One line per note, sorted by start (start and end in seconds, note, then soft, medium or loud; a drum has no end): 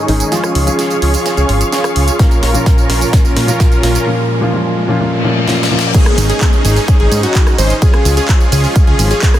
0.00 0.34 G#2 medium
0.00 0.08 D#3 medium
0.00 0.08 G#3 medium
0.00 0.09 C#4 medium
0.00 0.29 C#4 medium
0.00 0.09 D#4 medium
0.00 0.29 D#4 medium
0.00 0.29 G#4 medium
0.00 2.16 G#4 medium
0.00 4.03 C#5 medium
0.00 0.30 D#5 medium
0.00 0.30 C#6 medium
0.00 riser medium
0.08 0.23 G#1 medium
0.08 0.29 D#3 medium
0.08 0.29 G#3 medium
0.08 0.29 C#4 medium
0.08 0.29 D#4 loud
0.08 open hi-hat loud
0.20 closed hi-hat medium
0.20 tambourine medium
0.31 0.64 F3 medium
0.31 0.64 G#3 medium
0.31 0.64 C#4 medium
0.31 0.64 F4 medium
0.31 0.65 F4 loud
0.31 0.64 G#4 medium
0.31 4.03 F5 medium
0.31 4.03 C#6 medium
0.31 snare medium
0.31 closed hi-hat soft
0.31 tambourine medium
0.44 cross-stick medium
0.44 closed hi-hat soft
0.44 tambourine soft
0.55 0.70 C#2 loud
0.55 open hi-hat loud
0.66 2.16 F3 medium
0.66 2.16 G#3 medium
0.66 0.99 C#4 medium
0.66 2.17 C#4 medium
0.66 0.99 F4 medium
0.66 2.17 F4 medium
0.66 0.99 G#4 loud
0.66 closed hi-hat medium
0.66 tambourine medium
0.79 snare medium
0.79 closed hi-hat medium
0.79 tambourine soft
0.91 closed hi-hat soft
0.91 tambourine soft
1.02 1.16 C#2 medium
1.02 1.35 C#4 medium
1.02 1.35 F4 medium
1.02 1.35 G#4 medium
1.02 open hi-hat loud
1.14 open hi-hat medium
1.14 tambourine medium
1.26 snare medium
1.26 closed hi-hat medium
1.26 tambourine medium
1.37 1.44 C#2 medium
1.37 1.61 C#4 medium
1.37 1.61 F4 medium
1.37 1.61 G#4 medium
1.37 closed hi-hat soft
1.37 tambourine soft
1.49 1.63 G#1 loud
1.49 open hi-hat loud
1.61 closed hi-hat medium
1.61 tambourine medium
1.72 2.17 C#4 medium
1.72 2.17 F4 medium
1.72 2.17 G#4 medium
1.72 snare medium
1.72 closed hi-hat medium
1.72 tambourine medium
1.84 cross-stick medium
1.84 closed hi-hat soft
1.84 tambourine soft
1.96 2.10 C#2 medium
1.96 open hi-hat loud
2.08 closed hi-hat medium
2.08 tambourine medium
2.19 2.51 A#2 medium
2.19 2.52 F3 medium
2.19 2.52 A#3 medium
2.19 2.52 C#4 medium
2.19 2.52 F4 medium
2.19 2.52 A#4 medium
2.19 4.05 A#4 medium
2.19 kick loud
2.19 snare medium
2.19 closed hi-hat soft
2.19 tambourine medium
2.31 closed hi-hat soft
2.31 tambourine soft
2.43 2.57 A#1 loud
2.43 snare medium
2.43 open hi-hat loud
2.53 3.11 A#2 medium
2.53 3.11 F3 medium
2.53 3.11 A#3 medium
2.53 2.87 C#4 medium
2.53 3.12 C#4 medium
2.53 2.87 F4 medium
2.53 3.12 F4 medium
2.53 2.87 A#4 medium
2.53 closed hi-hat medium
2.53 tambourine medium
2.66 kick loud
2.66 snare medium
2.66 closed hi-hat soft
2.66 tambourine medium
2.78 closed hi-hat soft
2.78 tambourine soft
2.90 3.04 A#1 medium
2.90 3.11 C#4 medium
2.90 3.11 F4 medium
2.90 3.11 A#4 medium
2.90 snare medium
2.90 open hi-hat loud
3.01 open hi-hat medium
3.01 tambourine medium
3.13 3.45 A#2 medium
3.13 3.45 F3 medium
3.13 3.46 A#3 medium
3.13 3.46 C#4 medium
3.13 3.46 F4 medium
3.13 kick loud
3.13 snare medium
3.13 closed hi-hat medium
3.13 tambourine medium
3.25 3.32 A#1 medium
3.25 closed hi-hat soft
3.25 tambourine soft
3.37 3.51 A#2 loud
3.37 snare medium
3.37 open hi-hat loud
3.47 4.04 A#2 medium
3.47 4.05 F3 medium
3.47 4.05 A#3 medium
3.47 3.81 C#4 medium
3.47 4.05 C#4 medium
3.47 3.81 F4 medium
3.47 4.06 F4 medium
3.47 3.81 A#4 loud
3.47 closed hi-hat medium
3.47 tambourine medium
3.60 kick loud
3.60 snare medium
3.60 closed hi-hat soft
3.60 tambourine medium
3.72 closed hi-hat soft
3.72 tambourine soft
3.83 3.98 A#1 medium
3.83 4.05 C#4 medium
3.83 4.05 F4 medium
3.83 4.05 A#4 medium
3.83 snare medium
3.83 open hi-hat loud
3.95 closed hi-hat soft
3.95 tambourine medium
4.06 4.39 A#2 medium
4.06 4.39 F3 medium
4.06 4.39 A#3 medium
4.06 4.39 C#4 medium
4.06 4.40 F4 medium
4.41 4.51 A#2 medium
4.41 4.52 F3 medium
4.41 4.52 A#3 medium
4.41 4.52 C#4 medium
4.41 4.53 F4 medium
4.53 4.86 A#2 medium
4.53 4.86 F3 medium
4.53 4.86 A#3 medium
4.53 4.86 C#4 medium
4.53 4.86 F4 medium
4.88 4.98 A#2 medium
4.88 4.98 F3 medium
4.88 4.99 A#3 medium
4.88 4.99 C#4 medium
4.88 4.99 F4 loud
5.00 5.22 A#2 medium
5.00 5.22 F3 medium
5.00 5.22 A#3 medium
5.00 5.22 C#4 medium
5.00 5.23 F4 medium
5.00 reverse cymbal medium
5.24 5.45 A#2 medium
5.24 5.46 F3 medium
5.24 5.46 A#3 medium
5.24 5.46 C#4 medium
5.24 5.46 F4 medium
5.47 5.69 A#2 medium
5.47 5.69 F3 medium
5.47 5.69 A#3 medium
5.47 5.69 C#4 medium
5.47 5.69 F4 medium
5.47 snare medium
5.63 snare medium
5.70 5.92 A#2 medium
5.70 5.92 F3 medium
5.70 5.93 A#3 medium
5.70 5.93 C#4 medium
5.70 5.93 F4 medium
5.79 snare loud
5.94 9.39 G#3 medium
5.94 6.27 C#4 medium
5.94 9.39 C#4 medium
5.94 6.27 D#4 medium
5.94 7.80 D#4 medium
5.94 6.27 G#4 loud
5.94 6.27 G#4 medium
5.94 kick loud
5.94 closed hi-hat medium
5.94 crash loud
5.94 tambourine soft
5.94 downlifter medium
6.06 cross-stick medium
6.06 closed hi-hat soft
6.18 6.32 G#1 loud
6.18 open hi-hat loud
6.18 tambourine medium
6.30 6.62 C#4 medium
6.30 6.62 D#4 medium
6.30 6.62 G#4 loud
6.30 closed hi-hat medium
6.30 tambourine soft
6.41 kick loud
6.41 clap loud
6.41 closed hi-hat medium
6.41 tambourine soft
6.53 closed hi-hat soft
6.53 tambourine soft
6.65 6.79 G#1 medium
6.65 6.97 C#4 medium
6.65 6.97 D#4 medium
6.65 6.97 G#4 medium
6.65 open hi-hat loud
6.65 tambourine medium
6.76 open hi-hat medium
6.76 tambourine soft
6.88 kick loud
6.88 closed hi-hat medium
6.88 tambourine soft
7.00 7.07 G#1 medium
7.00 7.21 C#4 medium
7.00 7.21 D#4 medium
7.00 7.21 G#4 medium
7.00 closed hi-hat soft
7.12 7.26 G#2 loud
7.12 open hi-hat loud
7.12 tambourine medium
7.23 7.56 C#4 medium
7.23 7.56 D#4 medium
7.23 7.56 F#4 medium
7.23 closed hi-hat medium
7.23 tambourine soft
7.35 kick loud
7.35 clap loud
7.35 closed hi-hat medium
7.35 tambourine soft
7.47 cross-stick medium
7.47 closed hi-hat soft
7.47 tambourine soft
7.58 7.73 G#1 medium
7.58 7.73 C#4 loud
7.58 7.73 D#4 medium
7.58 7.73 C5 loud
7.58 open hi-hat loud
7.58 tambourine medium
7.70 closed hi-hat medium
7.70 tambourine soft
7.82 9.39 F3 medium
7.82 8.14 C#4 medium
7.82 8.14 F4 medium
7.82 8.14 G#4 medium
7.82 kick loud
7.82 closed hi-hat medium
7.82 tambourine soft
7.94 cross-stick medium
7.94 closed hi-hat soft
8.05 8.20 C#2 loud
8.05 open hi-hat loud
8.05 tambourine medium
8.17 8.49 C#4 medium
8.17 8.49 F4 medium
8.17 8.49 G#4 loud
8.17 closed hi-hat medium
8.17 tambourine soft
8.28 kick loud
8.28 clap loud
8.28 closed hi-hat medium
8.28 tambourine soft
8.40 closed hi-hat soft
8.40 tambourine soft
8.52 8.66 C#2 medium
8.52 8.85 C#4 medium
8.52 8.85 F4 medium
8.52 8.85 G#4 medium
8.52 open hi-hat loud
8.52 tambourine medium
8.64 open hi-hat medium
8.64 tambourine soft
8.76 kick loud
8.76 closed hi-hat medium
8.76 tambourine soft
8.87 8.95 C#2 medium
8.87 9.08 C#4 medium
8.87 9.08 F4 medium
8.87 9.08 G#4 medium
8.87 closed hi-hat soft
8.99 9.13 G#1 loud
8.99 open hi-hat loud
8.99 tambourine medium
9.11 9.39 C#4 medium
9.11 9.39 F4 medium
9.11 9.39 G#4 medium
9.11 closed hi-hat medium
9.11 tambourine soft
9.22 kick loud
9.22 clap loud
9.22 closed hi-hat medium
9.22 tambourine soft
9.34 cross-stick medium
9.34 closed hi-hat soft
9.34 tambourine soft